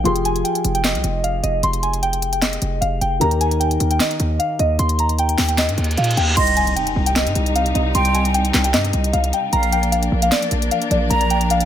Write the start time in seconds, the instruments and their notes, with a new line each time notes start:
0.04 808-style bass F1, felt piano F3 F4 G4 G#4, synth bell C6, closed hi-hat
0.16 closed hi-hat
0.25 synth bell G#5, closed hi-hat
0.36 closed hi-hat
0.44 synth bell G5, closed hi-hat
0.55 closed hi-hat
0.65 808-style bass F1, closed hi-hat
0.75 synth bell G5, closed hi-hat
0.84 synth bell D#5, snare, clap, closed hi-hat
0.95 808-style bass C2, closed hi-hat
1.04 808-style bass F1, closed hi-hat
1.24 synth bell F5, closed hi-hat
1.43 808-style bass F1, synth bell D#5, closed hi-hat
1.63 808-style bass F1, synth bell C6, closed hi-hat
1.73 closed hi-hat
1.83 synth bell G#5, closed hi-hat
1.94 closed hi-hat
2.03 synth bell G5, closed hi-hat
2.13 closed hi-hat
2.22 closed hi-hat
2.33 synth bell G5, closed hi-hat
2.42 synth bell D#5, snare, clap, closed hi-hat
2.53 closed hi-hat
2.62 808-style bass F1, closed hi-hat
2.81 808-style bass F1, synth bell F5, closed hi-hat
3.01 808-style bass F1, synth bell G5, closed hi-hat
3.20 808-style bass D#2, felt piano D#3 D#4 G4 A#4, synth bell A#5, closed hi-hat
3.31 closed hi-hat
3.41 synth bell G#5, closed hi-hat
3.51 closed hi-hat
3.60 synth bell G5, closed hi-hat
3.71 closed hi-hat
3.80 808-style bass D#2, closed hi-hat
3.91 synth bell G5, closed hi-hat
4.00 synth bell D#5, snare, clap, closed hi-hat
4.11 closed hi-hat
4.20 808-style bass D#2, closed hi-hat
4.39 synth bell F5, closed hi-hat
4.59 808-style bass D#2, synth bell D#5, closed hi-hat
4.79 808-style bass D#2, synth bell C6, closed hi-hat
4.89 closed hi-hat
4.99 synth bell A#5, closed hi-hat
5.09 closed hi-hat
5.19 synth bell G5, closed hi-hat
5.29 closed hi-hat
5.38 808-style bass D#2, snare, clap, open hi-hat
5.49 synth bell G5, closed hi-hat
5.58 synth bell D#5, snare, clap, closed hi-hat, reverse cymbal
5.68 808-style bass G2, closed hi-hat
5.78 808-style bass D#2, closed hi-hat
5.84 closed hi-hat
5.91 closed hi-hat
5.97 808-style bass A#2, synth bell F5, closed hi-hat
6.04 closed hi-hat
6.11 closed hi-hat
6.17 808-style bass D#2, synth bell G5, closed hi-hat
6.37 808-style bass C2, string section C3 G3 D#4, flute D#5, synth bell C6, closed hi-hat, crash, impact
6.47 closed hi-hat
6.57 synth bell G#5, closed hi-hat
6.67 closed hi-hat
6.76 synth bell G5, closed hi-hat
6.87 closed hi-hat
6.96 808-style bass C2
7.06 synth bell G5, closed hi-hat
7.16 synth bell D#5, snare, clap, closed hi-hat
7.26 808-style bass G2, closed hi-hat
7.35 808-style bass C2, closed hi-hat
7.46 closed hi-hat
7.55 synth bell F5, closed hi-hat
7.66 closed hi-hat
7.75 808-style bass C2, synth bell D#5, closed hi-hat
7.95 808-style bass C2, flute G5, synth bell C6, closed hi-hat
8.05 closed hi-hat
8.15 synth bell G#5, closed hi-hat
8.25 closed hi-hat
8.34 synth bell G5, closed hi-hat
8.45 closed hi-hat
8.54 808-style bass C2, snare, clap
8.64 synth bell G5, closed hi-hat
8.74 808-style bass G2, synth bell D#5, snare, clap, closed hi-hat
8.85 closed hi-hat
8.93 808-style bass C2, closed hi-hat
9.04 closed hi-hat
9.13 808-style bass C2, synth bell F5, closed hi-hat
9.24 closed hi-hat
9.33 synth bell G5, closed hi-hat
9.53 808-style bass A#1, string section F3 A#3 D4, flute F5, synth bell A#5, closed hi-hat
9.63 closed hi-hat
9.72 synth bell G5, closed hi-hat
9.83 closed hi-hat
9.92 synth bell F5, closed hi-hat
10.03 closed hi-hat
10.12 808-style bass A#1
10.22 synth bell F5, closed hi-hat
10.32 synth bell D5, snare, clap, closed hi-hat
10.42 closed hi-hat
10.51 808-style bass A#1, closed hi-hat
10.62 closed hi-hat
10.71 synth bell F5, closed hi-hat
10.82 closed hi-hat
10.91 808-style bass A#1, synth bell D5, closed hi-hat
11.10 808-style bass A#1, synth bell A#5, flute A#5, closed hi-hat
11.21 closed hi-hat
11.30 synth bell G5, closed hi-hat
11.41 closed hi-hat
11.50 synth bell F5, closed hi-hat
11.61 closed hi-hat